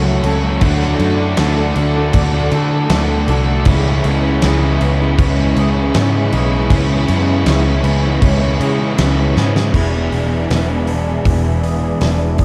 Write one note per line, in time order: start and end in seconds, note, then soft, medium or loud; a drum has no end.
0.00 0.19 C#2 medium
0.00 0.59 F#2 medium
0.00 0.21 C#3 medium
0.00 0.60 C#3 medium
0.00 0.22 F#3 medium
0.00 0.60 F#3 loud
0.00 0.23 A3 medium
0.00 0.23 C#4 loud
0.00 0.62 C#4 medium
0.00 0.62 E4 medium
0.00 0.24 F#4 loud
0.00 0.23 A4 medium
0.00 3.62 A4 medium
0.00 0.58 E5 medium
0.00 3.62 F#5 medium
0.00 0.58 C#6 medium
0.23 0.57 C#2 medium
0.23 0.59 C#3 medium
0.23 0.44 F#3 medium
0.23 0.43 A3 medium
0.23 0.42 C#4 medium
0.23 0.40 F#4 medium
0.23 0.62 A4 medium
0.23 crash medium
0.41 0.61 F#3 medium
0.41 0.60 A3 medium
0.41 0.60 C#4 medium
0.41 0.59 F#4 medium
0.61 0.96 D2 medium
0.61 0.99 D3 medium
0.61 1.00 F#3 medium
0.61 2.53 F#3 medium
0.61 1.00 A3 medium
0.61 1.01 D4 loud
0.61 0.99 F#4 loud
0.61 3.63 D5 medium
0.61 3.64 D6 loud
0.61 kick loud
0.61 crash medium
0.81 snare soft
0.99 1.34 F#2 loud
0.99 1.37 D3 medium
0.99 1.38 F#3 medium
0.99 1.76 A3 medium
0.99 1.38 A3 medium
0.99 1.39 D4 medium
0.99 1.16 F#4 medium
0.99 crash medium
1.17 1.36 A3 medium
1.17 1.38 D4 medium
1.17 1.38 F#4 medium
1.37 1.72 D2 medium
1.37 1.76 D3 medium
1.37 1.58 F#3 loud
1.37 1.57 A3 medium
1.37 1.57 D4 loud
1.37 1.76 F#4 medium
1.37 2.52 A4 medium
1.37 snare loud
1.37 crash medium
1.58 1.76 F#3 medium
1.58 1.76 A3 medium
1.58 1.77 D4 medium
1.75 2.10 D2 medium
1.75 2.32 D3 medium
1.75 1.96 A3 medium
1.75 2.90 A3 medium
1.75 1.95 D4 medium
1.75 1.94 F#4 loud
1.75 muted overdriven electric guitar stroke soft
1.75 crash medium
1.95 2.34 F#3 medium
1.95 2.33 A3 medium
1.95 2.32 D4 medium
1.95 2.31 F#4 medium
2.13 2.48 D2 loud
2.13 3.67 D4 medium
2.13 kick loud
2.13 crash loud
2.32 2.53 F#3 medium
2.32 2.54 A3 medium
2.32 2.54 D4 medium
2.32 2.52 F#4 medium
2.51 2.86 D3 loud
2.51 2.90 D3 medium
2.51 2.73 F#3 medium
2.51 2.72 A3 medium
2.51 2.71 D4 medium
2.51 2.90 F#4 loud
2.51 3.28 A4 medium
2.51 crash medium
2.72 2.90 F#3 medium
2.72 2.91 A3 medium
2.72 2.91 D4 medium
2.89 3.24 D2 medium
2.89 3.27 D3 medium
2.89 3.28 F#3 loud
2.89 3.67 A3 medium
2.89 3.29 A3 loud
2.89 3.30 D4 medium
2.89 3.29 F#4 medium
2.89 snare loud
2.89 crash medium
3.28 3.62 C2 medium
3.28 3.64 D3 medium
3.28 3.49 F#3 medium
3.28 3.48 A3 medium
3.28 3.47 D4 medium
3.28 3.46 F#4 medium
3.28 3.67 A4 medium
3.28 crash medium
3.48 3.66 F#3 medium
3.48 3.65 A3 medium
3.48 3.65 D4 medium
3.48 3.64 F#4 medium
3.65 4.00 C#2 loud
3.65 4.04 C#3 medium
3.65 4.05 E3 medium
3.65 6.70 E3 medium
3.65 4.06 G#3 loud
3.65 4.06 C#4 loud
3.65 4.06 E4 loud
3.65 9.71 B4 medium
3.65 9.71 E5 medium
3.65 9.71 G#5 medium
3.65 9.71 C#6 loud
3.65 kick loud
3.65 crash medium
4.04 4.39 C#2 loud
4.04 4.43 C#3 medium
4.04 4.43 E3 medium
4.04 4.44 G#3 medium
4.04 4.81 B3 medium
4.04 4.45 C#4 loud
4.04 4.23 E4 medium
4.04 crash medium
4.24 4.43 G#3 medium
4.24 4.43 C#4 medium
4.24 4.44 E4 medium
4.42 4.77 C#2 medium
4.42 4.82 C#3 medium
4.42 4.64 E3 medium
4.42 4.63 G#3 loud
4.42 4.62 C#4 loud
4.42 4.83 E4 loud
4.42 5.57 G#4 medium
4.42 snare loud
4.42 crash medium
4.62 4.82 E3 medium
4.62 4.82 G#3 medium
4.62 4.82 C#4 medium
4.81 5.15 C#2 loud
4.81 5.56 E3 medium
4.81 5.02 G#3 medium
4.81 5.95 B3 medium
4.81 5.00 C#4 medium
4.81 5.00 E4 medium
4.81 muted overdriven electric guitar stroke medium
4.81 crash medium
5.00 5.40 E3 medium
5.00 5.38 G#3 medium
5.00 5.36 C#4 medium
5.00 5.37 E4 medium
5.18 5.53 C#2 loud
5.18 7.09 C#4 medium
5.18 kick loud
5.18 crash medium
5.37 5.57 E3 medium
5.37 5.58 G#3 medium
5.37 5.58 C#4 medium
5.37 5.58 E4 medium
5.56 5.91 C#2 medium
5.56 5.93 C#3 medium
5.56 5.77 E3 medium
5.56 5.76 G#3 medium
5.56 5.74 C#4 medium
5.56 5.96 E4 medium
5.56 6.32 G#4 medium
5.56 crash medium
5.76 5.95 E3 medium
5.76 5.95 G#3 medium
5.76 5.95 C#4 medium
5.94 6.29 G#2 medium
5.94 6.30 C#3 medium
5.94 6.32 E3 medium
5.94 6.32 G#3 loud
5.94 7.08 B3 medium
5.94 6.32 C#4 loud
5.94 6.34 E4 medium
5.94 snare loud
5.94 crash medium
6.31 6.67 B1 medium
6.31 6.69 C#3 medium
6.31 6.52 E3 medium
6.31 6.51 G#3 medium
6.31 6.50 C#4 medium
6.31 6.51 E4 medium
6.31 7.46 G#4 medium
6.31 crash medium
6.51 6.70 E3 medium
6.51 6.70 G#3 medium
6.51 6.71 C#4 medium
6.51 6.71 E4 medium
6.70 7.05 C#2 medium
6.70 7.06 C#3 medium
6.70 8.61 E3 medium
6.70 7.07 E3 medium
6.70 7.08 G#3 medium
6.70 7.09 C#4 loud
6.70 7.09 E4 loud
6.70 kick loud
6.70 crash medium
7.08 7.43 F#2 loud
7.08 7.44 C#3 medium
7.08 7.45 E3 medium
7.08 7.45 G#3 medium
7.08 7.84 B3 medium
7.08 7.46 C#4 medium
7.08 7.26 E4 medium
7.08 crash medium
7.28 7.45 G#3 medium
7.28 7.45 C#4 medium
7.28 7.46 E4 medium
7.45 7.81 C#2 loud
7.45 7.83 C#3 medium
7.45 7.66 E3 loud
7.45 7.65 G#3 loud
7.45 7.64 C#4 loud
7.45 7.83 E4 medium
7.45 8.59 G#4 medium
7.45 snare loud
7.45 crash medium
7.65 7.83 E3 medium
7.65 7.83 G#3 medium
7.65 7.84 C#4 medium
7.82 8.18 C#2 medium
7.82 8.41 E3 medium
7.82 8.03 G#3 medium
7.82 8.97 B3 medium
7.82 8.02 C#4 medium
7.82 8.01 E4 medium
7.82 muted overdriven electric guitar stroke soft
7.82 crash medium
8.02 8.42 E3 medium
8.02 8.41 G#3 medium
8.02 8.39 C#4 medium
8.02 8.39 E4 medium
8.22 8.57 C#2 loud
8.22 9.75 C#4 medium
8.22 kick loud
8.22 crash medium
8.40 8.59 E3 medium
8.40 8.59 G#3 medium
8.40 8.60 C#4 medium
8.40 8.61 E4 medium
8.60 8.96 C#3 medium
8.60 8.95 C#3 medium
8.60 8.79 E3 medium
8.60 8.78 G#3 medium
8.60 8.77 C#4 medium
8.60 8.98 E4 medium
8.60 9.36 G#4 medium
8.60 crash medium
8.78 8.97 E3 medium
8.78 8.98 G#3 medium
8.78 8.98 C#4 medium
8.97 9.33 C#2 medium
8.97 9.35 C#3 medium
8.97 9.35 E3 loud
8.97 9.36 G#3 loud
8.97 9.73 B3 medium
8.97 9.37 C#4 loud
8.97 9.36 E4 medium
8.97 snare loud
8.97 crash medium
9.36 9.71 G#2 medium
9.36 9.72 C#3 medium
9.36 9.56 E3 medium
9.36 9.56 G#3 medium
9.36 9.54 C#4 medium
9.36 9.53 E4 medium
9.36 9.75 G#4 medium
9.36 snare medium
9.54 9.73 E3 medium
9.54 9.73 G#3 medium
9.54 9.72 C#4 medium
9.54 9.72 E4 medium
9.54 snare medium
9.73 10.08 E1 medium
9.73 12.45 E2 medium
9.73 12.45 B2 loud
9.73 12.45 E3 medium
9.73 12.45 G#3 medium
9.73 10.49 B3 medium
9.73 12.45 B3 medium
9.73 12.45 D4 medium
9.73 12.45 E4 medium
9.73 12.45 G#4 medium
9.73 12.45 B4 medium
9.73 12.45 D5 medium
9.73 12.45 E5 medium
9.73 12.45 G#5 medium
9.73 kick loud
9.73 crash loud
10.12 10.46 E1 medium
10.12 open hi-hat soft
10.50 11.19 E1 medium
10.50 11.25 B3 medium
10.50 snare loud
10.50 open hi-hat medium
10.87 12.01 D4 medium
10.87 open hi-hat soft
11.25 11.93 E1 medium
11.25 12.45 B3 medium
11.25 kick loud
11.25 open hi-hat medium
11.63 12.39 G#4 medium
11.63 open hi-hat soft
12.01 12.45 E1 medium
12.01 12.45 D4 medium
12.01 snare medium
12.01 open hi-hat medium
12.38 12.45 G#4 medium
12.38 kick medium
12.38 open hi-hat medium